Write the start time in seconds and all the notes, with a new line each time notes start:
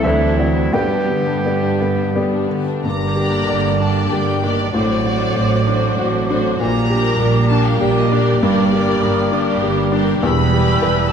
Already playing: C4
0.03 D2 E3 F#3 C4 D4 E4 A4 C5 E5
0.20 F#3 A3 D4
0.37 E3 C4 E4 F#4 D5
0.54 F#3 A3 D4
0.71 G2 D3 G3 B3 G4 B4 D5 G5
0.89 G3 D4
1.08 D3 B3 G4
1.27 G3 D4
1.44 D3 B3 G4 D5
1.61 G3 D4
1.79 D3 B3 G4
1.96 G3 D4
2.12 D3 B3 G4 D5
2.31 G3 D4
2.48 D3 B3 G4
2.65 G3 D4
2.83 G1 G2 D3 G3 D4 A#4 A#5 D6
3.16 A#3 D4 G4 D5
3.48 G1 G2 D5
3.78 A#3 D4 G4 D5 A5
4.10 G1 G2 D3 G4 A#4 G5 D6
4.41 D#3 A#3 D4 G4 D5
4.72 A1 A2 F#3 A3 C4 D4 F#4 C5 D6
5.04 A3 D4 F#4 C5
5.36 A1 A2 C5
5.67 A3 D4 F#4 C5
5.99 A1 A2 F#4
6.29 A3 D4 F#4 C5
6.59 A#1 A#2 G3 A#3 A#4 A#5 D6
6.89 G3 D4 G4 A#4
7.19 A#1 A#2 A#4
7.50 G3 D4 G4 A#4 A5
7.67 F5
7.79 A#1 A#2 G3 G4 A#4 G5 D6
7.98 D#5
8.11 G3 D4 G4 A#4 D5
8.41 G1 G2 G3 D4 G4 A#4 D6
8.72 G3 D4 G4 A#4
9.02 G1 G2 A#4
9.32 G3 D4 G4 A#4
9.62 G1 G2 G4
9.91 G3 D4 G4 A#4
10.22 E1 E2 G3 B3 B4 B5 E6
10.52 G3 E4 G4 B4
10.82 E1 E2 B4